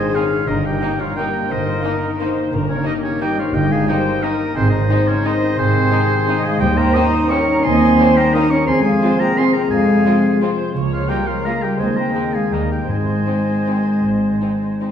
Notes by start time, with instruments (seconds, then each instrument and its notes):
Already playing: harp G#2 D#3 C4 D#4 G#4 D#5, trombone section D#3 G#3, cello section G#3, french horn section C4 D#4, clarinet G#4, viola section C5, flute D#5, oboe G#5
0.13 cello section F3, violin section C4 D#4 G#4, harp D#4, clarinet F4, viola section G#4, flute C#5, oboe F5
0.32 harp C4
0.47 double bass section G1, harp G2, trombone section D#3 A#3, cello section D#3, french horn section A#3 D#4, clarinet D#4, viola section A#4, flute A#4, oboe D#5
0.64 cello section G3, harp A#3, clarinet G4, flute D#5, oboe G5
0.81 violin section A#3 D#4, harp D#4, viola section A#4
0.99 cello section F3, clarinet F4, harp A#4, flute C#5, oboe F5
1.16 cello section G3, violin section A#3 D#4, harp D#4, clarinet G4, flute D#5, oboe G5
1.34 harp A#3
1.50 double bass section G1, harp G2, cello section D#3, clarinet D#4, flute A#4, viola section C5, oboe D#5
1.68 harp G3
1.83 violin section A#3 D#4, harp D#4, viola section A#4
2.03 harp A#4
2.18 violin section A#3 D#4, harp D#4, viola section C5
2.37 harp A#3
2.51 double bass section G1, harp G2, trombone section D#3 A#3, french horn section A#3 D#4, viola section A#4
2.68 cello section C#3, harp A#3, clarinet C#4, flute A#4, oboe C#5
2.84 cello section D#3, violin section A#3 D#4, clarinet D#4, harp D#4, viola section G4, flute A#4, oboe D#5
3.02 cello section C#3, clarinet C#4, flute A#4, harp A#4, oboe C#5
3.20 cello section G3, violin section A#3 D#4, harp D#4, clarinet G4, flute D#5, oboe G5
3.37 cello section F3, harp A#3, clarinet F4, flute C#5, oboe F5
3.53 double bass section G1, harp G2, cello section G3, clarinet G4, flute D#5, oboe G5
3.70 harp G3, cello section G#3, clarinet G#4, flute F5, oboe G#5
3.88 cello section G3, violin section A#3 D#4, harp D#4, clarinet G4, viola section C5, flute D#5, oboe G5
4.06 harp A#4
4.23 cello section D#3, violin section A#3 D#4, clarinet D#4, harp D#4, viola section A#4, flute A#4, oboe D#5
4.41 harp A#3
4.55 double bass section G#1, harp G#2, cello section C3, trombone section D#3 G#3, clarinet C4, french horn section C4 D#4, flute G#4, viola section G#4, oboe C5
4.70 cello section D#3, harp G#3, clarinet D#4, flute C5, oboe D#5
4.90 violin section G#3 D#4, harp D#4, viola section C5
5.08 cello section C#3, clarinet C#4, flute A#4, harp C5, oboe C#5
5.24 cello section D#3, violin section G#3 D#4, clarinet D#4, harp D#4, flute C5, viola section C5, oboe D#5
5.43 harp G#3
5.58 double bass section G#1, harp G#2, cello section C3, clarinet C4, flute G#4, oboe C5
5.75 harp D#3
5.91 violin section G#3 D#4, harp D#4, viola section G#4
6.10 harp C5
6.28 violin section G#3 D#4, harp D#4, viola section D#5
6.44 harp G#3, cello section G#3, clarinet G#4, flute F5, oboe G#5
6.60 double bass section D#2, harp D#3, timpani D#3, trombone section D#3 G3, cello section G3, french horn section C#4 D#4, clarinet G4, viola section C5, flute D#5, oboe G5
6.77 cello section A#3, harp C#4, clarinet A#4, flute G5, oboe A#5
6.94 violin section A#3 C#4 G4, cello section D#4, clarinet D#5, flute A#5, oboe D#6
7.14 harp G4
7.30 violin section A#3 C#4 G4, cello section C#4, harp A#4, viola section A#4, clarinet C#5, flute A#5, oboe C#6
7.49 harp C#4
7.63 double bass section D#2, harp D#3, cello section C4, clarinet C5, viola section D#5, flute G#5, oboe C6
7.82 harp G3
7.99 violin section A#3 C#4 G4, harp A#4, viola section C5
8.17 cello section A#3, harp G4, clarinet A#4, flute G5, oboe A#5
8.34 violin section A#3 C#4 G4, cello section D#4, viola section A#4, harp A#4, clarinet D#5, flute A#5, oboe D#6
8.51 cello section C#4, harp C#4, clarinet C#5, flute A#5, oboe C#6
8.65 double bass section F2, harp F3, trombone section G#3, cello section C4, french horn section C4 F4, viola section G#4, clarinet C5, flute G#5, oboe C6
8.70 trombone section C3
8.82 cello section G#3, harp C4, clarinet G#4, flute F5, oboe G#5
9.02 violin section G#3 C4 F4, harp F4, viola section C5
9.19 cello section A#3, harp G#4, clarinet A#4, flute G5, oboe A#5
9.36 violin section G#3 C4 F4, cello section C4, harp F4, viola section G#4, clarinet C5, flute G#5, oboe C6
9.53 cello section A#3, harp C4, clarinet A#4, flute G5, oboe A#5
9.70 double bass section F2, harp F3, cello section G#3, clarinet G#4, flute F5, oboe G#5
9.89 harp G#3
10.05 violin section G#3 C4 F4, harp F4
10.26 harp G#4
10.42 violin section G#3 C4 F4, harp F4, viola section C5
10.60 harp C4
10.75 double bass section C#2, trombone section C#3 G#3, harp C#3, french horn section A#3 F4, viola section C#5
10.92 cello section F3, harp A#3, clarinet F4, flute C#5, oboe F5
11.09 cello section G3, violin section G#3 A#3 F4, harp F4, clarinet G4, viola section A#4, flute D#5, oboe G5
11.27 cello section F3, clarinet F4, harp G#4, flute C#5, oboe F5
11.45 violin section G#3 A#3 F4, cello section A#3, harp F4, clarinet A#4, flute F5, oboe A#5
11.62 cello section G3, harp A#3, clarinet G4, flute D#5, oboe G5
11.79 double bass section D#2, trombone section D#3, harp D#3, cello section G#3, french horn section C4 D#4, clarinet G#4, viola section C5, flute D#5, oboe G#5
11.95 cello section A#3, harp C4, clarinet A#4, flute G5, oboe A#5
12.14 violin section G#3 C4 D#4, harp D#4, viola section G#4
12.32 cello section G#3, clarinet G#4, harp G#4, flute F5, oboe G#5
12.52 double bass section D#2, cello section D#3, harp D#3, violin section G3 A#3 D#4, trombone section G3, french horn section A#3, clarinet D#4, flute A#4, viola section A#4, oboe D#5
12.70 cello section G3, harp A#3 D#4, clarinet G4, flute D#5, oboe G5
12.88 double bass section G#1, harp G#2, timpani G#2, trombone section D#3 G#3, cello section G#3, french horn section C4 D#4, clarinet G#4, viola section C5, flute D#5, oboe G#5
13.08 harp G#3
13.27 violin section G#3 C4 D#4, harp C4
13.48 harp D#4
13.67 violin section G#3 C4 D#4, harp C4
13.87 harp G#3
14.04 double bass section G#1, harp G#2
14.24 harp D#3
14.41 violin section G#3 C4 D#4, harp C4
14.62 harp D#4
14.81 violin section G#3 C4 D#4, harp C4